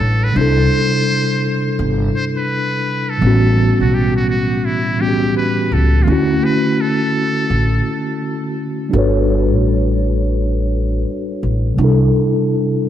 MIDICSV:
0, 0, Header, 1, 4, 480
1, 0, Start_track
1, 0, Key_signature, 2, "major"
1, 0, Tempo, 714286
1, 238, Time_signature, 4, 2, 24, 8
1, 8663, End_track
2, 0, Start_track
2, 0, Title_t, "Muted trumpet"
2, 0, Program_c, 0, 59
2, 0, Note_on_c, 0, 69, 86
2, 160, Note_on_c, 0, 71, 92
2, 170, Note_off_c, 0, 69, 0
2, 249, Note_on_c, 0, 72, 114
2, 259, Note_off_c, 0, 71, 0
2, 1277, Note_off_c, 0, 72, 0
2, 1445, Note_on_c, 0, 72, 87
2, 1512, Note_off_c, 0, 72, 0
2, 1595, Note_on_c, 0, 71, 97
2, 2081, Note_on_c, 0, 69, 94
2, 2091, Note_off_c, 0, 71, 0
2, 2555, Note_off_c, 0, 69, 0
2, 2562, Note_on_c, 0, 66, 81
2, 2651, Note_on_c, 0, 67, 87
2, 2661, Note_off_c, 0, 66, 0
2, 2795, Note_off_c, 0, 67, 0
2, 2799, Note_on_c, 0, 66, 84
2, 2877, Note_off_c, 0, 66, 0
2, 2887, Note_on_c, 0, 66, 86
2, 3127, Note_on_c, 0, 64, 90
2, 3137, Note_off_c, 0, 66, 0
2, 3367, Note_on_c, 0, 67, 84
2, 3377, Note_off_c, 0, 64, 0
2, 3603, Note_off_c, 0, 67, 0
2, 3610, Note_on_c, 0, 71, 86
2, 3852, Note_on_c, 0, 69, 89
2, 3862, Note_off_c, 0, 71, 0
2, 4053, Note_on_c, 0, 65, 66
2, 4063, Note_off_c, 0, 69, 0
2, 4094, Note_on_c, 0, 66, 83
2, 4104, Note_off_c, 0, 65, 0
2, 4331, Note_on_c, 0, 71, 100
2, 4341, Note_off_c, 0, 66, 0
2, 4575, Note_on_c, 0, 69, 93
2, 4585, Note_off_c, 0, 71, 0
2, 5766, Note_off_c, 0, 69, 0
2, 8663, End_track
3, 0, Start_track
3, 0, Title_t, "Tine electric piano"
3, 0, Program_c, 1, 4
3, 0, Control_c, 1, 64, 127
3, 0, Note_on_c, 1, 55, 63
3, 0, Note_on_c, 1, 62, 54
3, 0, Note_on_c, 1, 69, 55
3, 0, Note_on_c, 1, 71, 59
3, 0, Note_on_c, 1, 73, 69
3, 0, Note_on_c, 1, 78, 56
3, 199, Note_off_c, 1, 55, 0
3, 204, Note_off_c, 1, 62, 0
3, 211, Note_off_c, 1, 78, 0
3, 213, Note_on_c, 1, 48, 67
3, 218, Note_off_c, 1, 69, 0
3, 224, Note_off_c, 1, 71, 0
3, 228, Note_on_c, 1, 55, 59
3, 231, Note_off_c, 1, 73, 0
3, 244, Note_on_c, 1, 62, 58
3, 245, Control_c, 1, 64, 0
3, 260, Note_on_c, 1, 64, 53
3, 275, Note_on_c, 1, 69, 67
3, 384, Control_c, 1, 64, 127
3, 2118, Note_off_c, 1, 48, 0
3, 2126, Note_off_c, 1, 55, 0
3, 2134, Note_off_c, 1, 62, 0
3, 2134, Note_on_c, 1, 45, 61
3, 2142, Note_off_c, 1, 64, 0
3, 2146, Note_on_c, 1, 52, 60
3, 2150, Note_off_c, 1, 69, 0
3, 2159, Note_on_c, 1, 55, 61
3, 2166, Control_c, 1, 64, 0
3, 2172, Note_on_c, 1, 59, 60
3, 2185, Note_on_c, 1, 61, 64
3, 2197, Note_on_c, 1, 66, 80
3, 2299, Control_c, 1, 64, 127
3, 3322, Note_off_c, 1, 45, 0
3, 3328, Note_off_c, 1, 52, 0
3, 3334, Note_off_c, 1, 55, 0
3, 3340, Note_on_c, 1, 45, 42
3, 3341, Note_off_c, 1, 59, 0
3, 3347, Note_on_c, 1, 52, 42
3, 3348, Note_off_c, 1, 61, 0
3, 3353, Note_on_c, 1, 55, 43
3, 3354, Note_off_c, 1, 66, 0
3, 3361, Note_on_c, 1, 59, 45
3, 3367, Note_on_c, 1, 61, 42
3, 3373, Note_on_c, 1, 66, 41
3, 3417, Note_on_c, 1, 67, 49
3, 3420, Note_off_c, 1, 66, 0
3, 4048, Note_on_c, 1, 50, 64
3, 4065, Note_on_c, 1, 57, 60
3, 4069, Note_off_c, 1, 45, 0
3, 4073, Note_off_c, 1, 52, 0
3, 4074, Note_off_c, 1, 61, 0
3, 4075, Note_off_c, 1, 55, 0
3, 4079, Note_off_c, 1, 59, 0
3, 4082, Note_on_c, 1, 61, 66
3, 4085, Control_c, 1, 64, 0
3, 4097, Note_on_c, 1, 64, 55
3, 4107, Note_off_c, 1, 67, 0
3, 4112, Note_on_c, 1, 66, 72
3, 4218, Control_c, 1, 64, 127
3, 5956, Note_off_c, 1, 50, 0
3, 5964, Note_off_c, 1, 57, 0
3, 5973, Note_off_c, 1, 61, 0
3, 5975, Note_on_c, 1, 55, 57
3, 5981, Note_off_c, 1, 64, 0
3, 5988, Note_off_c, 1, 66, 0
3, 5988, Note_on_c, 1, 62, 57
3, 6001, Note_on_c, 1, 66, 58
3, 6005, Control_c, 1, 64, 0
3, 6013, Note_on_c, 1, 69, 53
3, 6025, Note_on_c, 1, 71, 58
3, 6038, Note_on_c, 1, 73, 75
3, 6118, Control_c, 1, 64, 127
3, 7880, Note_off_c, 1, 55, 0
3, 7886, Note_off_c, 1, 62, 0
3, 7892, Note_off_c, 1, 66, 0
3, 7893, Note_on_c, 1, 48, 67
3, 7898, Note_off_c, 1, 69, 0
3, 7905, Note_off_c, 1, 71, 0
3, 7907, Note_on_c, 1, 55, 59
3, 7911, Note_off_c, 1, 73, 0
3, 7925, Note_on_c, 1, 62, 62
3, 7927, Control_c, 1, 64, 0
3, 7940, Note_on_c, 1, 64, 56
3, 7958, Note_on_c, 1, 69, 68
3, 8042, Control_c, 1, 64, 127
3, 8663, Note_off_c, 1, 48, 0
3, 8663, Note_off_c, 1, 55, 0
3, 8663, Note_off_c, 1, 62, 0
3, 8663, Note_off_c, 1, 64, 0
3, 8663, Note_off_c, 1, 69, 0
3, 8663, End_track
4, 0, Start_track
4, 0, Title_t, "Upright bass"
4, 0, Program_c, 2, 32
4, 1, Note_on_c, 2, 33, 79
4, 198, Note_off_c, 2, 33, 0
4, 241, Note_on_c, 2, 36, 100
4, 438, Note_off_c, 2, 36, 0
4, 1203, Note_on_c, 2, 31, 89
4, 1399, Note_off_c, 2, 31, 0
4, 2162, Note_on_c, 2, 33, 97
4, 2483, Note_off_c, 2, 33, 0
4, 2554, Note_on_c, 2, 35, 74
4, 3574, Note_off_c, 2, 35, 0
4, 3842, Note_on_c, 2, 37, 84
4, 4038, Note_off_c, 2, 37, 0
4, 4083, Note_on_c, 2, 38, 93
4, 4279, Note_off_c, 2, 38, 0
4, 5041, Note_on_c, 2, 33, 88
4, 5238, Note_off_c, 2, 33, 0
4, 6003, Note_on_c, 2, 31, 102
4, 6393, Note_off_c, 2, 31, 0
4, 6393, Note_on_c, 2, 33, 77
4, 7413, Note_off_c, 2, 33, 0
4, 7681, Note_on_c, 2, 33, 83
4, 7878, Note_off_c, 2, 33, 0
4, 7918, Note_on_c, 2, 36, 94
4, 8116, Note_off_c, 2, 36, 0
4, 8663, End_track
0, 0, End_of_file